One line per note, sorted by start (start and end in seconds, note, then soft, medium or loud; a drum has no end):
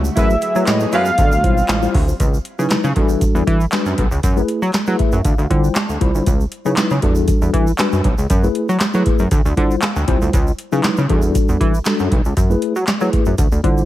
0.00 0.15 D3 medium
0.00 0.15 G3 medium
0.00 1.16 A3 medium
0.00 0.14 F#4 medium
0.05 shaker medium
0.16 0.35 F#2 loud
0.16 2.18 F#3 medium
0.16 0.28 G#3 medium
0.16 0.34 A3 medium
0.16 0.28 B3 medium
0.16 1.17 B3 medium
0.16 0.28 E4 medium
0.16 0.34 E4 medium
0.16 0.34 G#4 medium
0.16 1.17 G#4 medium
0.16 0.28 B4 medium
0.16 0.34 B4 medium
0.16 0.70 E5 loud
0.16 kick loud
0.16 closed hi-hat medium
0.16 shaker medium
0.30 shaker soft
0.42 closed hi-hat medium
0.42 shaker medium
0.55 0.64 F#3 medium
0.55 0.95 A3 medium
0.55 0.95 E4 medium
0.55 0.95 G#4 medium
0.55 0.95 B4 medium
0.55 shaker medium
0.67 0.86 A2 loud
0.67 0.93 D#5 loud
0.67 snare loud
0.67 clap medium
0.67 closed hi-hat medium
0.67 shaker medium
0.80 shaker soft
0.92 1.11 F#2 loud
0.92 1.09 G#3 loud
0.92 1.09 B3 medium
0.92 1.09 E4 medium
0.92 1.09 B4 loud
0.92 1.91 F5 loud
0.92 closed hi-hat medium
0.92 shaker medium
1.05 shaker medium
1.18 1.45 D2 loud
1.18 2.19 G3 medium
1.18 2.19 C4 medium
1.18 2.19 F4 medium
1.18 kick loud
1.18 closed hi-hat loud
1.18 shaker medium
1.32 shaker medium
1.43 1.62 B1 medium
1.43 1.56 G3 medium
1.43 1.56 E4 medium
1.43 1.56 F4 medium
1.43 1.56 C5 medium
1.43 kick medium
1.43 closed hi-hat medium
1.58 shaker medium
1.69 1.87 A1 medium
1.69 1.75 F4 loud
1.69 1.75 C5 loud
1.69 snare loud
1.69 clap loud
1.69 closed hi-hat medium
1.69 shaker medium
1.82 1.93 G3 medium
1.82 1.93 E4 medium
1.82 1.93 F4 medium
1.82 1.93 C5 medium
1.82 shaker medium
1.94 2.13 D2 medium
1.94 kick medium
1.94 open hi-hat medium
2.07 2.13 F4 medium
2.07 2.13 C5 loud
2.07 shaker medium
2.20 2.38 C#2 loud
2.20 kick medium
2.20 closed hi-hat medium
2.20 shaker medium
2.34 shaker soft
2.45 closed hi-hat medium
2.59 2.68 C#3 medium
2.59 2.87 F#3 medium
2.59 2.87 D#4 medium
2.59 2.87 E4 medium
2.59 2.87 B4 loud
2.59 shaker medium
2.70 2.76 C#3 soft
2.70 snare loud
2.70 clap medium
2.70 closed hi-hat medium
2.70 shaker medium
2.84 2.93 C#3 loud
2.84 shaker soft
2.96 3.24 E2 medium
2.96 3.58 G3 medium
2.96 3.58 D4 medium
2.96 3.58 F#4 medium
2.96 3.58 A4 loud
2.96 kick medium
2.96 closed hi-hat medium
3.09 shaker soft
3.21 kick loud
3.21 closed hi-hat medium
3.21 shaker medium
3.35 3.43 E2 medium
3.35 shaker soft
3.47 3.65 E3 loud
3.47 kick medium
3.47 closed hi-hat medium
3.61 shaker medium
3.72 4.01 G3 medium
3.72 4.01 D4 medium
3.72 4.01 F#4 medium
3.72 4.01 B4 loud
3.72 snare loud
3.72 clap loud
3.72 closed hi-hat medium
3.72 shaker medium
3.86 3.94 F#2 medium
3.86 shaker medium
3.98 4.08 B1 medium
3.98 kick medium
3.98 closed hi-hat medium
4.11 4.20 C#2 medium
4.11 shaker medium
4.23 4.42 F#2 loud
4.23 kick loud
4.23 closed hi-hat medium
4.23 shaker medium
4.37 4.59 A3 medium
4.37 4.59 E4 medium
4.37 4.60 G#4 medium
4.37 4.60 B4 loud
4.37 shaker soft
4.48 closed hi-hat medium
4.62 4.71 F#3 medium
4.62 shaker medium
4.74 4.80 F#3 soft
4.74 snare loud
4.74 clap medium
4.74 closed hi-hat medium
4.74 shaker medium
4.87 4.96 F#3 medium
4.87 5.16 A3 medium
4.87 5.16 E4 medium
4.87 5.16 G#4 medium
4.87 5.16 B4 medium
4.87 shaker soft
4.99 5.23 E5 medium
4.99 kick medium
4.99 closed hi-hat medium
5.12 5.21 F#2 medium
5.12 shaker soft
5.25 5.35 D2 loud
5.25 5.49 F5 medium
5.25 kick loud
5.25 closed hi-hat medium
5.25 shaker medium
5.38 5.47 D2 loud
5.38 shaker soft
5.50 5.69 D3 medium
5.50 5.73 G3 medium
5.50 5.73 E4 medium
5.50 5.73 F4 medium
5.50 5.73 C5 loud
5.50 5.74 G5 medium
5.50 kick medium
5.50 closed hi-hat medium
5.64 shaker soft
5.75 6.00 A5 medium
5.75 snare loud
5.75 clap medium
5.75 closed hi-hat medium
5.75 shaker medium
5.89 5.98 D2 medium
5.89 shaker soft
6.01 6.11 C2 medium
6.01 6.26 G3 medium
6.01 6.26 E4 medium
6.01 6.27 F4 medium
6.01 6.27 C5 loud
6.01 6.25 B5 medium
6.01 kick medium
6.01 closed hi-hat medium
6.15 6.23 D2 medium
6.15 shaker medium
6.26 6.45 C#2 loud
6.26 kick loud
6.26 closed hi-hat medium
6.26 shaker medium
6.40 shaker soft
6.52 closed hi-hat medium
6.65 6.74 C#3 medium
6.65 6.94 F#3 medium
6.65 6.94 D#4 medium
6.65 6.94 E4 medium
6.65 6.94 B4 loud
6.65 shaker medium
6.77 6.83 C#3 medium
6.77 snare loud
6.77 clap medium
6.77 closed hi-hat medium
6.77 shaker medium
6.90 7.00 C#3 loud
6.90 shaker soft
7.02 7.31 E2 medium
7.02 7.64 G3 medium
7.02 7.64 D4 medium
7.02 7.64 F#4 medium
7.02 7.65 A4 loud
7.02 kick medium
7.02 closed hi-hat medium
7.15 shaker medium
7.28 kick loud
7.28 closed hi-hat medium
7.28 shaker medium
7.42 7.50 E2 loud
7.42 shaker medium
7.53 7.72 E3 loud
7.53 kick medium
7.53 closed hi-hat medium
7.67 shaker medium
7.78 8.08 G3 medium
7.78 8.08 D4 medium
7.78 8.08 F#4 medium
7.78 8.08 B4 loud
7.78 snare loud
7.78 clap medium
7.78 closed hi-hat medium
7.78 shaker medium
7.92 8.01 F#2 medium
7.92 shaker soft
8.04 8.14 B1 medium
8.04 kick medium
8.04 closed hi-hat medium
8.18 8.27 C#2 medium
8.18 shaker medium
8.30 8.48 F#2 loud
8.30 kick loud
8.30 closed hi-hat medium
8.30 shaker medium
8.43 8.66 A3 medium
8.43 8.66 E4 medium
8.43 8.66 G#4 medium
8.43 8.66 B4 loud
8.43 shaker soft
8.55 closed hi-hat medium
8.69 8.78 F#3 medium
8.69 shaker medium
8.80 8.86 F#3 soft
8.80 snare loud
8.80 clap medium
8.80 closed hi-hat medium
8.80 shaker medium
8.94 9.03 F#3 loud
8.94 9.22 A3 medium
8.94 9.23 E4 medium
8.94 9.23 G#4 medium
8.94 9.23 B4 medium
8.94 shaker soft
9.06 kick loud
9.06 closed hi-hat medium
9.19 9.28 F#2 medium
9.19 shaker medium
9.31 9.41 D2 loud
9.31 kick loud
9.31 closed hi-hat loud
9.31 shaker medium
9.45 9.54 D2 loud
9.45 shaker soft
9.57 9.75 D3 loud
9.57 9.80 G3 medium
9.57 9.80 E4 medium
9.57 9.80 F4 medium
9.57 9.80 C5 loud
9.57 kick medium
9.57 closed hi-hat medium
9.71 shaker soft
9.82 9.95 F5 medium
9.82 snare loud
9.82 clap loud
9.82 closed hi-hat medium
9.82 shaker medium
9.96 10.05 D2 medium
9.96 10.31 G5 medium
9.96 shaker soft
10.07 10.18 C2 medium
10.07 10.33 G3 medium
10.07 10.33 E4 medium
10.07 10.33 F4 medium
10.07 10.33 C5 loud
10.07 kick medium
10.07 closed hi-hat medium
10.22 10.30 D2 medium
10.22 shaker medium
10.33 10.52 C#2 loud
10.33 kick loud
10.33 closed hi-hat medium
10.33 shaker medium
10.47 shaker soft
10.59 closed hi-hat medium
10.72 10.81 C#3 medium
10.72 11.00 F#3 medium
10.72 11.01 D#4 medium
10.72 11.01 E4 medium
10.72 11.01 B4 medium
10.72 shaker medium
10.84 10.90 C#3 soft
10.84 snare medium
10.84 clap medium
10.84 closed hi-hat medium
10.84 shaker medium
10.97 11.07 C#3 loud
10.97 shaker soft
11.09 11.38 E2 medium
11.09 11.71 G3 medium
11.09 11.71 D4 medium
11.09 11.71 F#4 medium
11.09 11.71 A4 loud
11.09 kick loud
11.09 closed hi-hat medium
11.22 shaker medium
11.35 kick loud
11.35 closed hi-hat medium
11.35 shaker medium
11.49 11.57 E2 medium
11.49 shaker soft
11.61 11.79 E3 loud
11.61 kick medium
11.61 closed hi-hat medium
11.74 shaker medium
11.85 12.15 G3 medium
11.85 12.15 D4 medium
11.85 12.15 F#4 medium
11.85 12.15 A4 medium
11.85 snare loud
11.85 clap medium
11.85 closed hi-hat medium
11.85 shaker medium
11.99 12.08 F#2 medium
11.99 shaker soft
12.12 12.21 B1 medium
12.12 kick medium
12.12 closed hi-hat medium
12.25 12.34 C#2 medium
12.25 shaker medium
12.37 12.55 F#2 loud
12.37 kick loud
12.37 closed hi-hat medium
12.37 shaker medium
12.50 12.73 A3 medium
12.50 12.73 E4 medium
12.50 12.73 G#4 medium
12.50 12.73 B4 loud
12.50 shaker soft
12.62 closed hi-hat medium
12.76 12.84 F#3 medium
12.76 shaker medium
12.87 12.93 F#3 soft
12.87 snare loud
12.87 clap medium
12.87 closed hi-hat medium
12.87 shaker medium
13.01 13.10 F#3 medium
13.01 13.29 A3 medium
13.01 13.29 E4 medium
13.01 13.29 G#4 medium
13.01 13.30 B4 medium
13.01 shaker soft
13.13 kick medium
13.13 closed hi-hat medium
13.26 13.35 F#2 medium
13.26 shaker medium
13.38 13.48 D2 medium
13.38 kick loud
13.38 closed hi-hat loud
13.38 shaker medium
13.52 13.61 D2 loud
13.52 shaker soft
13.63 13.82 D3 medium
13.63 13.85 G3 medium
13.63 13.85 E4 medium
13.63 13.85 F4 medium
13.63 13.85 C5 loud
13.63 kick medium
13.63 closed hi-hat medium
13.78 shaker medium